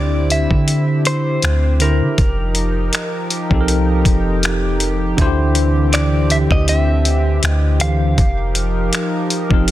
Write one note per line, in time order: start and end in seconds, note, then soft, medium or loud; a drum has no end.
0.00 0.47 D2 loud
0.00 0.27 D3 loud
0.00 2.15 D3 medium
0.00 2.15 C4 medium
0.00 0.28 D4 loud
0.00 0.29 E4 loud
0.00 2.15 E4 medium
0.00 0.29 G4 loud
0.00 9.71 G4 medium
0.00 0.30 C5 loud
0.00 0.28 D5 medium
0.30 1.02 E5 loud
0.30 closed hi-hat medium
0.51 1.39 D3 loud
0.51 kick medium
0.68 closed hi-hat medium
1.05 1.83 C5 medium
1.05 closed hi-hat medium
1.42 2.02 D2 loud
1.42 finger snap loud
1.42 closed hi-hat medium
1.79 2.17 D3 medium
1.79 2.18 D4 medium
1.79 2.19 E4 medium
1.79 2.19 G4 medium
1.79 3.27 A#4 medium
1.79 closed hi-hat medium
1.84 2.20 C5 medium
2.01 2.17 D3 medium
2.18 2.90 F1 loud
2.18 5.15 F3 medium
2.18 5.15 D#4 medium
2.18 5.15 A#4 medium
2.18 kick loud
2.18 closed hi-hat medium
2.55 closed hi-hat medium
2.93 finger snap loud
2.93 closed hi-hat medium
3.30 closed hi-hat medium
3.50 4.04 C2 loud
3.50 4.60 F3 medium
3.50 4.60 C4 medium
3.50 4.61 D#4 medium
3.50 4.62 G4 medium
3.50 kick loud
3.54 3.58 A4 medium
3.61 4.65 A#4 loud
3.68 closed hi-hat medium
4.05 5.14 F1 medium
4.05 kick loud
4.05 closed hi-hat medium
4.43 finger snap loud
4.43 closed hi-hat medium
4.80 closed hi-hat medium
5.17 6.47 D2 loud
5.17 6.28 D3 loud
5.17 8.15 D3 medium
5.17 8.15 E3 medium
5.17 8.15 C4 medium
5.17 6.28 D4 loud
5.17 6.29 E4 loud
5.17 5.26 F#4 medium
5.17 kick loud
5.17 closed hi-hat medium
5.21 6.30 C5 loud
5.27 6.32 G4 loud
5.55 closed hi-hat medium
5.93 6.31 D5 medium
5.93 finger snap loud
5.93 closed hi-hat medium
6.30 6.37 E5 medium
6.30 closed hi-hat medium
6.51 7.39 D2 loud
6.51 6.69 D#5 medium
6.51 kick medium
6.68 7.45 E5 loud
6.68 closed hi-hat medium
7.05 closed hi-hat medium
7.43 8.15 D2 loud
7.43 7.81 D#5 loud
7.43 finger snap loud
7.43 closed hi-hat medium
7.79 8.17 D3 medium
7.79 8.18 E3 medium
7.79 8.18 D4 medium
7.79 8.19 G4 medium
7.79 9.71 F5 loud
7.79 closed hi-hat medium
7.84 8.20 C5 medium
8.17 8.90 F1 loud
8.17 9.71 F3 medium
8.17 9.71 D#4 medium
8.17 9.71 A#4 medium
8.17 kick loud
8.17 closed hi-hat medium
8.55 closed hi-hat medium
8.93 finger snap loud
8.93 closed hi-hat medium
9.30 closed hi-hat medium
9.49 9.71 F1 loud
9.49 9.71 F3 medium
9.49 9.71 C4 medium
9.49 9.71 D#4 medium
9.49 9.71 G4 medium
9.49 kick medium
9.54 9.71 A#4 medium
9.68 closed hi-hat medium